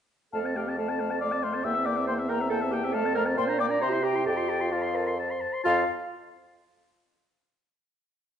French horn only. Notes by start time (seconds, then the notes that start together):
0.34 A3
0.45 C4
0.56 A3
0.67 C4
0.78 A3
0.89 C4
1.01 A3
1.11 C4
1.22 A3
1.33 C4
1.44 A3
1.55 C4
1.65 A#3
1.76 C4
1.87 A#3
1.97 C4
2.08 A#3
2.20 C4
2.30 A#3
2.41 C4
2.51 A#3
2.62 C4
2.73 A#3
2.84 C4
2.95 A3
3.05 C4
3.16 A3
3.27 C4
3.37 A#3
3.48 D4
3.59 A#3
3.70 D4
3.81 G4
3.92 E4
4.03 G4
4.14 E4
4.25 A4
4.37 F4
4.49 A4
4.60 F4
4.72 C5
4.96 A#4
5.19 C5
5.65 F4